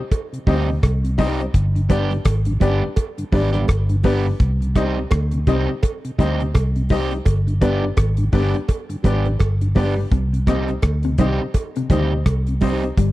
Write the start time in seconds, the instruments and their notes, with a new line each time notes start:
0.12 kick, closed hi-hat, cowbell
0.33 tonewheel organ C3, closed hi-hat
0.47 fingered electric bass D2, clean electric guitar G3 C4 D#4 G4, tonewheel organ G3 C4 D#4, upright piano D#4 G4 C5 D#5, kick, open hi-hat
0.69 tonewheel organ C3, upright piano C5 D#5
0.83 fingered electric bass C2, kick, cross-stick, closed hi-hat, cowbell
1.04 tonewheel organ C3, closed hi-hat
1.18 tonewheel organ G3 C4 D#4, clean electric guitar G3 C4 D#4 G4, upright piano D#4 G4 C5 D#5, kick, open hi-hat
1.40 tonewheel organ C4 D#4, closed hi-hat
1.54 fingered electric bass G1, kick, closed hi-hat
1.75 tonewheel organ G2 D3, closed hi-hat
1.89 tonewheel organ G3 B3 D4, clean electric guitar G3 B3 D4 G4, upright piano D4 G4 B4 D5, kick, closed hi-hat
2.11 tonewheel organ G2 D3, closed hi-hat
2.25 fingered electric bass G#1, kick, cross-stick, closed hi-hat, cowbell
2.45 tonewheel organ G2 D3, closed hi-hat
2.60 fingered electric bass G1, tonewheel organ G3 B3 D4, clean electric guitar G3 B3 D4 G4, upright piano D4 G4 B4 D5, kick, closed hi-hat
2.82 tonewheel organ G2 D3
2.96 kick, closed hi-hat, cowbell
3.18 tonewheel organ G2 D3, closed hi-hat
3.32 fingered electric bass G#1, tonewheel organ G3 B3 D4, clean electric guitar G3 B3 D4 G4, upright piano D4 G4 B4 D5, kick, open hi-hat
3.53 tonewheel organ G2 D3, clean electric guitar G3 B3 D4 G4, upright piano B4 D5, closed hi-hat
3.68 fingered electric bass G1, kick, cross-stick, closed hi-hat, cowbell
3.89 tonewheel organ G2 D3, closed hi-hat
4.03 tonewheel organ G3 B3 D4, clean electric guitar G3 B3 D4 G4, upright piano D4 G4 B4 D5, kick, open hi-hat
4.25 tonewheel organ G2 D3
4.40 fingered electric bass C2, kick, closed hi-hat
4.61 tonewheel organ C3, closed hi-hat
4.75 tonewheel organ G3 C4 D#4, clean electric guitar G3 C4 D#4 G4, upright piano D#4 G4 C5 D#5, kick, cross-stick, closed hi-hat
4.97 tonewheel organ C3
5.11 fingered electric bass D2, kick, cross-stick, closed hi-hat, cowbell
5.31 tonewheel organ C3, closed hi-hat
5.47 fingered electric bass C2, tonewheel organ G3 C4 D#4, clean electric guitar G3 C4 D#4 G4, upright piano D#4 G4 C5 D#5, kick, closed hi-hat
5.69 tonewheel organ C3
5.83 kick, closed hi-hat, cowbell
6.05 tonewheel organ C3, closed hi-hat
6.18 fingered electric bass D2, clean electric guitar G3 C4 D#4 G4, tonewheel organ G3 C4 D#4, upright piano D#4 G4 C5 D#5, kick, closed hi-hat
6.40 tonewheel organ C3, upright piano C5 D#5, closed hi-hat
6.54 fingered electric bass C2, kick, cross-stick, closed hi-hat, cowbell
6.76 tonewheel organ C3, closed hi-hat
6.89 tonewheel organ G3 C4 D#4, clean electric guitar G3 C4 D#4 G4, upright piano D#4 G4 C5 D#5, kick, open hi-hat
7.11 tonewheel organ C4 D#4, closed hi-hat
7.25 fingered electric bass G1, kick, closed hi-hat, cowbell
7.47 tonewheel organ G2 D3, closed hi-hat
7.61 tonewheel organ G3 B3 D4, clean electric guitar G3 B3 D4 G4, upright piano D4 G4 B4 D5, kick, closed hi-hat
7.82 tonewheel organ G2 D3
7.97 fingered electric bass G#1, kick, cross-stick, closed hi-hat, cowbell
8.17 tonewheel organ G2 D3, closed hi-hat
8.32 fingered electric bass G1, tonewheel organ G3 B3 D4, clean electric guitar G3 B3 D4 G4, upright piano D4 G4 B4 D5, kick, open hi-hat
8.54 tonewheel organ G2 D3, closed hi-hat
8.68 kick, closed hi-hat, cowbell
8.89 tonewheel organ G2 D3, closed hi-hat
9.03 fingered electric bass G#1, tonewheel organ G3 B3 D4, clean electric guitar G3 B3 D4 G4, upright piano D4 G4 B4 D5, kick, closed hi-hat
9.25 tonewheel organ G2 D3, upright piano B4 D5, closed hi-hat
9.40 fingered electric bass G1, kick, cross-stick, closed hi-hat, cowbell
9.61 tonewheel organ G2 D3, closed hi-hat
9.75 clean electric guitar G3 B3 D4 G4, tonewheel organ G3 B3 D4, upright piano D4 G4 B4 D5, kick, open hi-hat
9.97 tonewheel organ G2 D3, muted clean electric guitar stroke
10.12 fingered electric bass C2, clean electric guitar C3, kick, closed hi-hat
10.33 tonewheel organ C3, closed hi-hat
10.47 clean electric guitar A#2 G3 C4 D#4 G4, tonewheel organ G3 C4 D#4, upright piano D#4 G4 C5 D#5, kick, cross-stick, closed hi-hat
10.68 tonewheel organ C3, closed hi-hat
10.82 fingered electric bass D2, kick, cross-stick, closed hi-hat, cowbell
11.03 tonewheel organ C3, clean electric guitar C3, closed hi-hat
11.18 fingered electric bass C2, clean electric guitar D#3 G3 C4 D#4 G4, tonewheel organ G3 C4 D#4, upright piano D#4 G4 C5 D#5, kick, closed hi-hat
11.40 tonewheel organ C3
11.54 kick, closed hi-hat, cowbell
11.76 tonewheel organ C3, clean electric guitar C3, closed hi-hat
11.90 fingered electric bass D2, clean electric guitar D#3 G3 C4 D#4 G4, tonewheel organ G3 C4 D#4, upright piano D#4 G4 C5 D#5, kick, closed hi-hat
12.12 tonewheel organ C3, upright piano C5 D#5
12.26 fingered electric bass C2, kick, cross-stick, closed hi-hat, cowbell
12.47 tonewheel organ C3, closed hi-hat
12.61 clean electric guitar G3 C4 D#4 G4, tonewheel organ G3 C4 D#4, upright piano D#4 G4 C5 D#5, kick, open hi-hat
12.83 tonewheel organ C4 D#4, closed hi-hat
12.97 fingered electric bass G1, clean electric guitar G3, kick, closed hi-hat